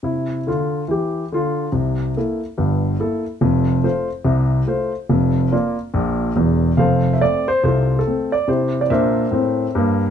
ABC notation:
X:1
M:4/4
L:1/16
Q:"Swing" 1/4=142
K:F
V:1 name="Grand piano"
z16 | z16 | z16 | z16 |
[Acf]3 e d2 c2 [FAc]3 A3 d2 | [EGc]3 d [Bce]8- [Bce]2 z2 |]
V:2 name="Grand piano" clef=bass
[C,E]4 [D,F]4 [E,G]4 [D,F]4 | [C,,C,]4 [B,EA]4 [G,,,G,,]4 [B,EA]4 | [F,,,F,,]4 [A,Fc]4 [C,,C,]4 [A,Fc]4 | [F,,,F,,]4 [B,Fd]4 [B,,,B,,]4 [E,,,E,,]4 |
[F,,,F,,]4 [A,C]4 [C,,C,]4 [A,C]4 | C,4 [B,,D]4 [A,,C]4 [G,,B,]4 |]